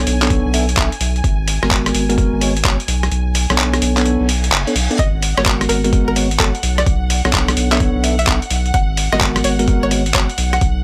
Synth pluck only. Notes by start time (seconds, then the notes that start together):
4.99 D#5
5.37 C#5
5.69 A#4
6.08 A#4
6.40 A4
6.78 D5
7.72 E5
8.19 E5
8.74 F#5
9.12 D#5
9.45 C#5
9.83 C#5
10.15 C#5
10.53 F#5